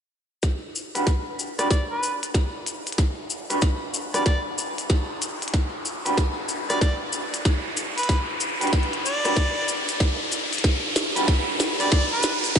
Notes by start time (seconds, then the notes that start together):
0.43 kick, snare, closed hi-hat, riser, cabasa
0.75 cabasa
0.95 D4 F#4 G4 B4, closed hi-hat, cabasa
1.07 kick, snare, closed hi-hat, cabasa
1.39 cabasa
1.59 D4 F#4 G4 B4 D5, cross-stick, closed hi-hat, cabasa
1.70 D5, kick, snare, closed hi-hat, cabasa
1.91 B4
2.03 cabasa
2.23 closed hi-hat, cabasa
2.34 kick, snare, closed hi-hat, cabasa
2.66 closed hi-hat, cabasa
2.87 closed hi-hat, cabasa
2.92 closed hi-hat
2.98 kick, snare, closed hi-hat, cabasa
3.30 cabasa
3.50 D4 F#4 G4 B4, closed hi-hat, cabasa
3.61 kick, snare, closed hi-hat, cabasa
3.94 cabasa
4.14 D4 F#4 G4 B4 D5, cross-stick, closed hi-hat, cabasa
4.26 D5, kick, snare, closed hi-hat, cabasa
4.58 cabasa
4.78 closed hi-hat, cabasa
4.89 kick, snare, closed hi-hat, cabasa
5.22 closed hi-hat, cabasa
5.42 closed hi-hat, cabasa
5.48 closed hi-hat
5.54 kick, snare, closed hi-hat, cabasa
5.85 cabasa
6.05 D4 F#4 G4 B4, closed hi-hat, cabasa
6.17 kick, snare, closed hi-hat, cabasa
6.49 cabasa
6.69 D4 F#4 G4 B4 D5, cross-stick, closed hi-hat, cabasa
6.81 D5, kick, snare, closed hi-hat, cabasa
7.12 cabasa
7.34 closed hi-hat, cabasa
7.45 kick, snare, closed hi-hat, cabasa
7.77 closed hi-hat, cabasa
7.98 B4, closed hi-hat, cabasa
8.03 closed hi-hat
8.09 kick, snare, closed hi-hat, cabasa
8.40 cabasa
8.61 D4 F#4 G4 B4, closed hi-hat, cabasa
8.67 closed hi-hat
8.73 kick, snare, closed hi-hat, cabasa
8.83 closed hi-hat
8.93 closed hi-hat
9.05 D5, cabasa
9.24 D4 F#4 G4 B4, cross-stick, closed hi-hat, cabasa
9.36 kick, snare, closed hi-hat, cabasa
9.68 cabasa
9.88 closed hi-hat, cabasa
10.00 kick, snare, closed hi-hat, cabasa
10.32 closed hi-hat, cabasa
10.53 closed hi-hat, cabasa
10.58 closed hi-hat
10.64 kick, snare, closed hi-hat, cabasa
10.96 snare, cabasa
11.16 D4 F#4 G4 B4, closed hi-hat, cabasa
11.28 kick, snare, closed hi-hat, cabasa
11.60 snare, cabasa
11.80 D4 F#4 G4 B4 D5, closed hi-hat, cabasa
11.91 D5, kick, snare, closed hi-hat, cabasa
12.12 B4
12.23 snare, cabasa
12.44 closed hi-hat, cabasa
12.56 kick, snare, closed hi-hat